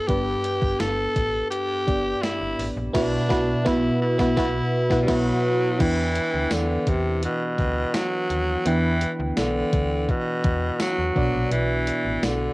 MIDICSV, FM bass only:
0, 0, Header, 1, 2, 480
1, 0, Start_track
1, 0, Key_signature, 1, "minor"
1, 0, Tempo, 714286
1, 58, Time_signature, 4, 2, 24, 8
1, 8423, End_track
2, 0, Start_track
2, 0, Title_t, "FM bass"
2, 0, Program_c, 0, 39
2, 60, Note_on_c, 0, 31, 111
2, 239, Note_off_c, 0, 31, 0
2, 417, Note_on_c, 0, 31, 90
2, 507, Note_off_c, 0, 31, 0
2, 543, Note_on_c, 0, 31, 97
2, 721, Note_off_c, 0, 31, 0
2, 781, Note_on_c, 0, 33, 92
2, 960, Note_off_c, 0, 33, 0
2, 1261, Note_on_c, 0, 31, 90
2, 1440, Note_off_c, 0, 31, 0
2, 1620, Note_on_c, 0, 31, 80
2, 1709, Note_off_c, 0, 31, 0
2, 1741, Note_on_c, 0, 33, 80
2, 1830, Note_off_c, 0, 33, 0
2, 1859, Note_on_c, 0, 34, 97
2, 1949, Note_off_c, 0, 34, 0
2, 1979, Note_on_c, 0, 35, 103
2, 2142, Note_off_c, 0, 35, 0
2, 2219, Note_on_c, 0, 35, 105
2, 2382, Note_off_c, 0, 35, 0
2, 2460, Note_on_c, 0, 35, 106
2, 2623, Note_off_c, 0, 35, 0
2, 2821, Note_on_c, 0, 35, 106
2, 2922, Note_off_c, 0, 35, 0
2, 2939, Note_on_c, 0, 35, 108
2, 3102, Note_off_c, 0, 35, 0
2, 3298, Note_on_c, 0, 35, 111
2, 3400, Note_off_c, 0, 35, 0
2, 3418, Note_on_c, 0, 35, 106
2, 3582, Note_off_c, 0, 35, 0
2, 3898, Note_on_c, 0, 40, 114
2, 4168, Note_off_c, 0, 40, 0
2, 4261, Note_on_c, 0, 38, 96
2, 4350, Note_off_c, 0, 38, 0
2, 4376, Note_on_c, 0, 40, 98
2, 4557, Note_off_c, 0, 40, 0
2, 4618, Note_on_c, 0, 40, 96
2, 4888, Note_off_c, 0, 40, 0
2, 5100, Note_on_c, 0, 38, 89
2, 5279, Note_off_c, 0, 38, 0
2, 5579, Note_on_c, 0, 39, 83
2, 5759, Note_off_c, 0, 39, 0
2, 5818, Note_on_c, 0, 40, 109
2, 6088, Note_off_c, 0, 40, 0
2, 6179, Note_on_c, 0, 38, 103
2, 6269, Note_off_c, 0, 38, 0
2, 6302, Note_on_c, 0, 35, 93
2, 6480, Note_off_c, 0, 35, 0
2, 6539, Note_on_c, 0, 38, 92
2, 6809, Note_off_c, 0, 38, 0
2, 7019, Note_on_c, 0, 40, 97
2, 7199, Note_off_c, 0, 40, 0
2, 7382, Note_on_c, 0, 40, 89
2, 7470, Note_off_c, 0, 40, 0
2, 7501, Note_on_c, 0, 35, 98
2, 7590, Note_off_c, 0, 35, 0
2, 7618, Note_on_c, 0, 34, 93
2, 7708, Note_off_c, 0, 34, 0
2, 7736, Note_on_c, 0, 35, 111
2, 8007, Note_off_c, 0, 35, 0
2, 8096, Note_on_c, 0, 33, 90
2, 8187, Note_off_c, 0, 33, 0
2, 8217, Note_on_c, 0, 35, 95
2, 8397, Note_off_c, 0, 35, 0
2, 8423, End_track
0, 0, End_of_file